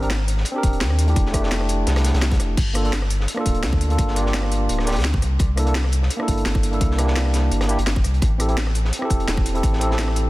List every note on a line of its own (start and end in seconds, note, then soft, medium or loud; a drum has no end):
0.00 0.44 G#1 loud
0.00 0.08 C4 medium
0.00 0.09 D4 medium
0.00 0.09 G4 medium
0.00 0.10 A#4 medium
0.00 closed hi-hat soft
0.10 snare loud
0.10 closed hi-hat medium
0.28 closed hi-hat medium
0.37 snare soft
0.45 closed hi-hat medium
0.52 1.04 C4 loud
0.52 1.05 D4 medium
0.56 1.06 G4 medium
0.56 1.07 A#4 loud
0.63 0.82 D#1 medium
0.63 kick loud
0.63 closed hi-hat loud
0.63 closed hi-hat medium
0.73 closed hi-hat soft
0.81 1.15 D#2 loud
0.81 snare loud
0.81 closed hi-hat medium
0.90 cross-stick soft
0.99 closed hi-hat loud
0.99 closed hi-hat medium
1.06 1.31 A3 medium
1.06 1.32 D4 medium
1.06 1.32 E4 medium
1.06 1.33 G4 medium
1.06 closed hi-hat soft
1.16 1.86 F1 loud
1.16 kick loud
1.16 closed hi-hat medium
1.26 snare soft
1.32 1.39 A3 medium
1.32 1.41 D4 medium
1.32 1.41 E4 medium
1.32 1.42 G4 loud
1.32 kick medium
1.32 cross-stick medium
1.32 closed hi-hat medium
1.32 closed hi-hat loud
1.40 2.55 A3 medium
1.40 2.56 D4 medium
1.40 snare medium
1.44 2.57 E4 medium
1.44 2.58 G4 medium
1.52 snare loud
1.52 closed hi-hat medium
1.61 cross-stick medium
1.69 closed hi-hat medium
1.69 closed hi-hat loud
1.87 2.12 C2 medium
1.87 snare loud
1.87 closed hi-hat medium
1.96 cross-stick medium
1.96 snare loud
1.96 closed hi-hat medium
2.04 snare loud
2.04 closed hi-hat loud
2.04 closed hi-hat medium
2.14 2.38 C2 loud
2.14 snare loud
2.14 closed hi-hat medium
2.22 snare loud
2.22 closed hi-hat medium
2.31 kick loud
2.31 snare loud
2.31 closed hi-hat medium
2.40 2.56 F1 loud
2.40 cross-stick soft
2.40 closed hi-hat medium
2.57 3.27 G1 loud
2.57 kick loud
2.57 closed hi-hat medium
2.57 crash loud
2.74 2.81 A#3 medium
2.74 2.82 D4 medium
2.74 2.82 F4 medium
2.74 2.83 A4 medium
2.74 cross-stick medium
2.74 closed hi-hat medium
2.83 2.91 A#3 medium
2.83 2.91 D4 medium
2.83 2.92 F4 medium
2.83 2.92 A4 medium
2.83 closed hi-hat soft
2.93 snare loud
2.93 closed hi-hat loud
2.93 closed hi-hat medium
3.02 cross-stick medium
3.10 closed hi-hat medium
3.10 closed hi-hat loud
3.20 snare soft
3.28 closed hi-hat loud
3.28 closed hi-hat medium
3.34 3.87 A#3 medium
3.34 3.88 D4 medium
3.34 cross-stick medium
3.38 3.89 F4 medium
3.38 3.90 A4 loud
3.46 3.65 D1 medium
3.46 kick medium
3.46 closed hi-hat loud
3.46 closed hi-hat medium
3.54 closed hi-hat soft
3.63 3.97 D2 loud
3.63 snare loud
3.63 closed hi-hat medium
3.63 closed hi-hat loud
3.73 kick loud
3.73 cross-stick medium
3.81 closed hi-hat loud
3.81 closed hi-hat medium
3.89 4.14 A#3 medium
3.89 4.14 D4 medium
3.89 4.15 F4 medium
3.89 4.15 A4 medium
3.89 closed hi-hat soft
3.98 4.68 G1 loud
3.98 kick loud
3.98 closed hi-hat medium
4.07 snare soft
4.15 4.21 A#3 medium
4.15 4.23 D4 medium
4.15 4.24 F4 medium
4.15 4.24 G4 medium
4.15 closed hi-hat medium
4.22 4.84 A#3 medium
4.22 4.85 D4 medium
4.22 snare medium
4.27 4.86 F4 medium
4.27 4.87 G4 medium
4.34 snare loud
4.34 closed hi-hat medium
4.43 cross-stick medium
4.52 closed hi-hat loud
4.52 closed hi-hat medium
4.69 4.98 D1 medium
4.69 closed hi-hat medium
4.79 cross-stick medium
4.79 snare soft
4.85 4.94 A#3 loud
4.85 4.94 D4 medium
4.85 4.95 F4 medium
4.85 4.96 G4 loud
4.85 snare medium
4.85 closed hi-hat medium
4.92 snare medium
4.92 closed hi-hat medium
4.96 5.21 D2 loud
4.96 snare medium
4.96 closed hi-hat medium
5.00 snare medium
5.00 closed hi-hat medium
5.04 snare loud
5.04 closed hi-hat medium
5.14 kick loud
5.14 snare soft
5.22 5.38 C2 loud
5.22 cross-stick soft
5.22 closed hi-hat loud
5.22 closed hi-hat medium
5.39 6.09 C2 loud
5.39 kick loud
5.39 closed hi-hat medium
5.56 5.64 A#3 medium
5.56 5.64 D4 medium
5.56 5.65 E4 medium
5.56 5.65 A4 loud
5.56 cross-stick medium
5.56 closed hi-hat medium
5.65 5.73 A#3 medium
5.65 5.74 D4 medium
5.65 5.74 E4 medium
5.65 5.75 A4 medium
5.65 closed hi-hat soft
5.75 snare loud
5.75 closed hi-hat medium
5.84 cross-stick medium
5.92 closed hi-hat medium
6.03 snare soft
6.10 closed hi-hat medium
6.17 6.69 A#3 medium
6.17 6.70 D4 medium
6.17 cross-stick medium
6.21 6.71 E4 medium
6.21 6.72 A4 loud
6.28 6.44 G1 medium
6.28 kick medium
6.28 closed hi-hat medium
6.37 closed hi-hat soft
6.46 6.80 G1 loud
6.46 snare loud
6.46 closed hi-hat medium
6.55 kick loud
6.55 cross-stick soft
6.63 closed hi-hat medium
6.71 6.96 A#3 medium
6.71 6.96 D4 medium
6.71 6.97 E4 medium
6.71 6.97 A4 medium
6.71 closed hi-hat soft
6.81 7.50 C2 loud
6.81 kick loud
6.81 closed hi-hat medium
6.91 snare soft
6.97 7.04 A#3 medium
6.97 7.05 D4 medium
6.97 7.06 E4 medium
6.97 7.06 G4 medium
6.97 cross-stick medium
6.97 closed hi-hat medium
7.05 7.66 A#3 medium
7.05 7.67 D4 medium
7.05 snare medium
7.09 7.68 E4 medium
7.09 7.69 G4 medium
7.16 snare loud
7.16 closed hi-hat medium
7.26 cross-stick medium
7.33 snare loud
7.33 closed hi-hat medium
7.51 7.77 G1 loud
7.51 closed hi-hat medium
7.61 cross-stick medium
7.61 snare loud
7.61 closed hi-hat medium
7.67 7.76 A#3 medium
7.67 7.77 D4 medium
7.67 7.77 E4 medium
7.67 7.78 G4 loud
7.67 closed hi-hat medium
7.79 8.03 G1 loud
7.79 closed hi-hat medium
7.86 snare loud
7.86 closed hi-hat medium
7.96 kick loud
7.96 snare soft
8.04 8.20 C2 loud
8.04 cross-stick soft
8.04 closed hi-hat medium
8.14 closed hi-hat soft
8.22 8.91 A1 loud
8.22 kick loud
8.22 closed hi-hat medium
8.38 8.46 C4 medium
8.38 8.47 E4 medium
8.38 8.47 G4 medium
8.38 8.48 A4 medium
8.38 cross-stick medium
8.38 closed hi-hat medium
8.48 8.55 C4 medium
8.48 8.56 E4 medium
8.48 8.56 G4 medium
8.48 8.57 A4 medium
8.48 closed hi-hat soft
8.57 snare loud
8.57 closed hi-hat medium
8.67 cross-stick medium
8.75 closed hi-hat medium
8.85 snare soft
8.93 closed hi-hat medium
8.99 9.51 C4 loud
8.99 9.52 E4 medium
8.99 cross-stick medium
9.03 9.53 G4 medium
9.03 9.54 A4 loud
9.10 9.26 E1 medium
9.10 kick medium
9.10 closed hi-hat medium
9.20 closed hi-hat soft
9.28 9.62 E1 loud
9.28 snare loud
9.28 closed hi-hat medium
9.37 kick loud
9.37 cross-stick soft
9.46 closed hi-hat medium
9.54 9.78 C4 medium
9.54 9.79 E4 medium
9.54 9.79 G4 medium
9.54 9.80 A4 medium
9.54 closed hi-hat soft
9.63 10.30 A1 loud
9.63 kick loud
9.63 closed hi-hat medium
9.73 snare soft
9.80 9.86 C4 medium
9.80 9.88 E4 medium
9.80 9.88 G4 medium
9.80 9.89 A4 medium
9.80 closed hi-hat medium
9.87 10.30 C4 medium
9.87 10.30 E4 medium
9.87 snare medium
9.91 10.30 G4 medium
9.91 10.30 A4 medium
9.99 snare loud
9.99 closed hi-hat medium
10.08 cross-stick medium
10.16 closed hi-hat medium